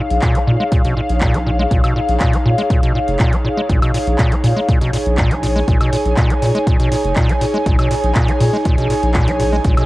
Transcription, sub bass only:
0.10 A#1
0.47 A#2
0.85 A#1
1.10 A#1
1.34 A#1
1.71 A#1
2.09 A#1
2.46 A#2
3.08 F1
3.69 A#1
4.07 A#1
4.44 A#2
4.81 A#1
5.06 A#1
5.31 A#1
5.68 A#1
6.05 A#1
6.42 A#2
7.05 F1
7.66 A#1
8.04 A#1
8.41 A#2
8.78 A#1
9.03 A#1
9.28 A#1
9.65 A#1

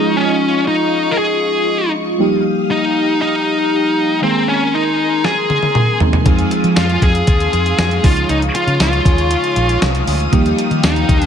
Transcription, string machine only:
Already playing: F4 D#5 C#6
2.19 G4 F5 D#6
4.23 A#4 G#5 C6
6.26 G#4 F5 D#6
8.04 C#5 F5
10.33 G4

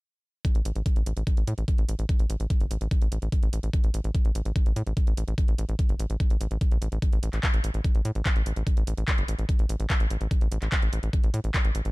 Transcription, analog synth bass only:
0.55 A1
0.65 A1
0.76 A1
0.96 A1
1.06 A1
1.17 A1
1.37 A1
1.47 A2
1.58 A1
1.78 A1
1.89 A1
1.99 A1
2.19 A1
2.30 A1
2.40 A1
2.60 G1
2.71 A1
2.81 A1
3.02 A1
3.12 A1
3.22 A1
3.43 A1
3.53 A1
3.63 A1
3.84 A1
3.94 A1
4.04 A1
4.25 A1
4.35 A1
4.45 A1
4.66 A1
4.76 A2
4.86 A1
5.07 A1
5.17 A1
5.28 A1
5.48 A1
5.58 A1
5.69 A1
5.89 G1
6.00 A1
6.10 A1
6.30 A1
6.41 A1
6.51 A1
6.71 A#1
6.82 A1
6.92 A1
7.13 A1
7.23 A1
7.33 A1
7.54 A1
7.64 A1
7.74 A1
7.95 A1
8.05 A2
8.15 A1
8.36 A1
8.46 A1
8.56 A1
8.77 A1
8.87 A1
8.97 A1
9.18 G1
9.28 A1
9.39 A1
9.59 A1
9.69 A1
9.80 A1
10.00 A1
10.11 A1
10.21 A1
10.41 A1
10.52 A1
10.62 A1
10.82 A1
10.93 A1
11.03 A1
11.23 A1
11.34 A2
11.44 A1
11.65 A1
11.75 A1
11.85 A1

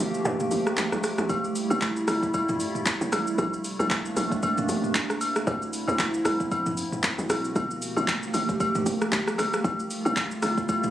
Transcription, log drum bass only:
0.00 G1
0.25 G2
0.51 G1
0.78 A1
0.93 A#1
1.19 A1
1.29 F1
1.71 F1
2.08 G1
3.01 F1
3.12 A1
3.38 A#1
3.80 A#1
4.16 A#1
4.69 A1
5.47 D2
5.88 D2
6.25 C2
7.18 G#1
7.30 B1
7.56 G1
7.97 G1
8.34 G1
8.86 F1
9.12 G1
9.38 G1
9.64 F1
10.06 F1
10.43 G1

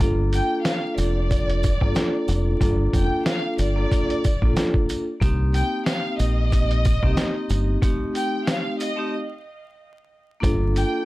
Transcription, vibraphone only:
Already playing: A#3 D4
0.00 F4 A4
1.81 A#3 D4 F4 A4
2.60 A#3 D4 F4 A4
3.76 A#3 D4 F4 A4
4.42 A#3 D4 F4 A4
5.20 A#3 C4 D#4 G4
7.03 A#3 C4 D#4 G4
7.82 A3 C4 D#4 G4
8.96 A3 C4 D#4 G4
10.40 A#3 D4 F4 A4

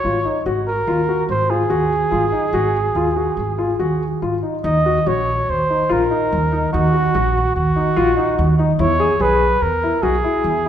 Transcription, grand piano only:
0.05 F4
0.25 D#4
0.46 F#4
0.88 F4
1.09 F#4
1.50 F4
1.70 F#4
2.11 F4
2.32 D#4
2.54 F#4
2.96 F4
3.16 F#4
3.58 F4
3.79 F#4
4.22 F4
4.43 D#4
4.64 D#4
4.86 F#4
5.07 F#4
5.70 D#4
5.89 F4
6.11 D#4
6.52 D#4
6.73 D#4
6.93 F#4
7.15 F#4
7.76 D#4
7.96 F4
8.17 D#4
8.59 D#4
8.79 E4
9.00 G#4
9.20 G#4
9.83 E4
10.03 F#4
10.24 E4

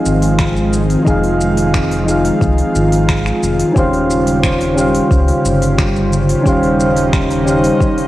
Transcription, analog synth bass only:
0.05 G#1
1.06 F1
2.41 C2
2.75 G#1
3.42 F1
3.76 D#1
5.11 C#2
5.45 G1
6.46 D#1

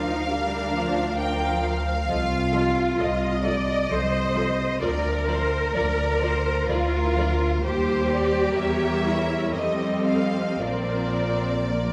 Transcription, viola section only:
Already playing: F3 A#4
0.29 G3
0.75 F3
1.18 F3 A#4
2.08 F3 A4
2.53 F3 A4
2.98 F3 A4
3.44 F3 A4
3.90 F3 A4
4.36 F3 A4
4.82 F3 A#4
5.27 F3 A#4
5.74 F3 A#4
6.22 F3 A#4
6.69 F3 A#4
7.17 F3 A#4
7.63 G3 C5
8.56 G3 A#4
9.56 G3 A4
10.61 F3 A#4
11.70 F3 A#4

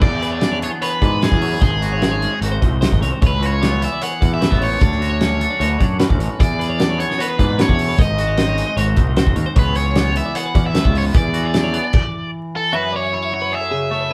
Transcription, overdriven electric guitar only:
0.02 D5
0.64 C#5
0.82 B4
1.23 G#4
1.63 G#4
3.27 B4
3.46 C#5
3.84 E5
4.03 F#5
4.34 E5
4.64 C#5
4.82 C#5
6.41 D5
7.00 C#5
7.21 B4
7.61 C#5
8.01 D#5
9.59 B4
9.77 C#5
10.17 E5
10.36 F#5
10.66 E5
10.98 C#5
11.17 D5
12.56 A4
12.76 B4
12.96 C#5
13.14 C#5
13.34 C#5
13.55 E5

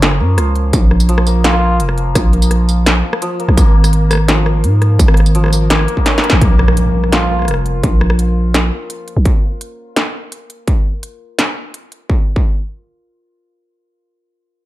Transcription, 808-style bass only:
Already playing: F#1
0.20 F#2
0.38 C#2
0.73 A#1
1.80 F1
2.15 A#1
3.48 A#1
3.58 G#1
4.64 G#2
4.99 G#1
6.33 G#1
6.41 A#1
7.48 F1
7.84 A#1
9.17 A#1

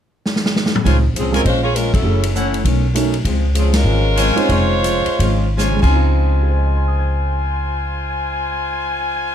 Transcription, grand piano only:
0.85 G#3 C4 D#4 F4
1.32 G#3 C4 C#4 F4
2.04 A3 C#4 E4 G#4
2.95 A3 C#4 D#4 F#4
4.35 G#3 C4 D#4 F4
5.70 C#3
5.76 G#3
5.83 C4
5.88 D#4
5.95 F4
6.42 G#4
6.49 C5
6.58 D#5
6.67 G#5
6.77 C6
6.88 D#6
6.99 G#6

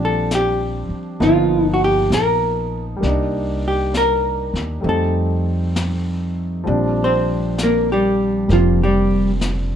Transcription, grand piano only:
Already playing: F3 G3 C4 D4
1.20 F3 A#3 B3 D#4
2.96 G3 A#3
3.03 D4 D#4
4.81 G3 A3 C4
4.85 D#4
6.64 F3 G3 C4
6.68 D4
8.48 G3 A#3 C4

